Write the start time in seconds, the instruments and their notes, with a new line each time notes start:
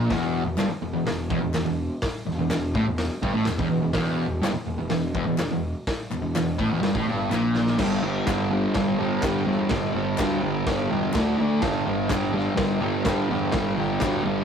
0.10 picked electric bass E1, distorted electric guitar E2, kick, snare, open hi-hat
0.45 picked electric bass E1, distorted electric guitar E2
0.57 picked electric bass G1, distorted electric guitar G2, snare, clap, open hi-hat
0.70 muted distorted electric guitar stroke, muted picked electric bass stroke
0.82 picked electric bass E1, distorted electric guitar E2
0.94 picked electric bass E1, distorted electric guitar E2
1.06 picked electric bass E1, distorted electric guitar E2, snare, open hi-hat
1.30 picked electric bass E1, distorted electric guitar E2, kick
1.41 picked electric bass E1, distorted electric guitar E2
1.54 picked electric bass E1, distorted electric guitar E2, snare, clap, open hi-hat
1.65 distorted electric guitar E2
1.69 picked electric bass E1
2.02 kick, snare, open hi-hat
2.26 picked electric bass E1, distorted electric guitar E2
2.39 picked electric bass E1, distorted electric guitar E2
2.50 picked electric bass E1, distorted electric guitar E2, snare, clap, open hi-hat
2.75 picked electric bass A1, distorted electric guitar A2, kick
2.86 picked electric bass E1, distorted electric guitar E2
2.98 snare, open hi-hat
3.22 picked electric bass G1, distorted electric guitar G2, kick
3.33 picked electric bass A1, distorted electric guitar A2
3.45 picked electric bass E1, distorted electric guitar E2, snare, clap, open hi-hat
3.58 picked electric bass E1, distorted electric guitar E2, kick
3.69 picked electric bass E1, distorted electric guitar E2
3.82 picked electric bass E1, distorted electric guitar E2
3.93 picked electric bass E1, distorted electric guitar E2, kick, snare, open hi-hat
4.28 picked electric bass E1, distorted electric guitar E2
4.41 picked electric bass G1, distorted electric guitar G2, snare, clap, open hi-hat
4.54 muted distorted electric guitar stroke, muted picked electric bass stroke
4.67 picked electric bass E1, distorted electric guitar E2
4.79 picked electric bass E1, distorted electric guitar E2
4.90 picked electric bass E1, distorted electric guitar E2, snare, open hi-hat
5.15 picked electric bass E1, distorted electric guitar E2, kick
5.26 picked electric bass E1, distorted electric guitar E2
5.38 picked electric bass E1, distorted electric guitar E2, snare, clap, open hi-hat
5.51 picked electric bass E1, distorted electric guitar E2
5.87 kick, snare, open hi-hat
6.11 picked electric bass E1, distorted electric guitar E2, clap
6.22 picked electric bass E1, distorted electric guitar E2
6.35 picked electric bass E1, distorted electric guitar E2, snare, clap, open hi-hat
6.58 picked electric bass A1, distorted electric guitar A2, kick
6.70 picked electric bass E1, distorted electric guitar E2
6.81 picked electric bass G1, distorted electric guitar G2, snare, open hi-hat
6.94 picked electric bass A1, distorted electric guitar A2, kick
7.06 picked electric bass G1, distorted electric guitar G2
7.30 picked electric bass A#1, distorted electric guitar A#2, snare, clap
7.55 snare
7.67 snare
7.78 picked electric bass G1, distorted electric guitar G2 D3 G3, kick, snare, crash
8.02 picked electric bass G1, distorted electric guitar G2 D3 G3
8.26 picked electric bass G1, distorted electric guitar G2 D3 G3, kick, snare, clap, crash
8.51 distorted electric guitar G2 D3 G3
8.74 picked electric bass G1, distorted electric guitar G2 D3 G3, kick, snare, crash
8.98 picked electric bass G1, distorted electric guitar G2 D3 G3
9.22 distorted electric guitar G2 D3 G3, picked electric bass G2, kick, snare, clap, crash
9.45 picked electric bass E2, distorted electric guitar G2 D3 G3
9.69 picked electric bass G1, distorted electric guitar G2 D3 G3, kick, snare, crash
9.93 picked electric bass G1, distorted electric guitar G2 D3 G3
10.18 picked electric bass D2, distorted electric guitar G2 D3 G3, kick, snare, clap, crash
10.42 picked electric bass G1, distorted electric guitar G2 D3 G3
10.65 picked electric bass G1, distorted electric guitar G2 D3 G3, kick, snare, crash
10.90 picked electric bass E1, distorted electric guitar G2 D3 G3
11.13 picked electric bass D2, distorted electric guitar D3 A3 D4, kick, snare, clap, crash
11.38 distorted electric guitar D3 A3 D4, picked electric bass D3
11.62 picked electric bass G1, distorted electric guitar G2 D3 G3, kick, snare, crash
11.86 picked electric bass G1, distorted electric guitar G2 D3 G3
12.09 picked electric bass G1, distorted electric guitar G2 D3 G3, kick, snare, clap, crash
12.32 distorted electric guitar G2 D3 G3
12.55 picked electric bass G1, distorted electric guitar G2 D3 G3, kick, snare, crash
12.80 picked electric bass G1, distorted electric guitar G2 D3 G3
13.05 distorted electric guitar G2 D3 G3, picked electric bass G2, kick, snare, clap, crash
13.29 picked electric bass E2, distorted electric guitar G2 D3 G3
13.52 picked electric bass G1, distorted electric guitar G2 D3, kick, snare, crash
13.57 distorted electric guitar G3
13.77 picked electric bass G1, distorted electric guitar G2 D3 G3
14.00 picked electric bass D2, distorted electric guitar G2 D3 G3, kick, snare, clap, crash
14.24 picked electric bass G1, distorted electric guitar G2 D3 G3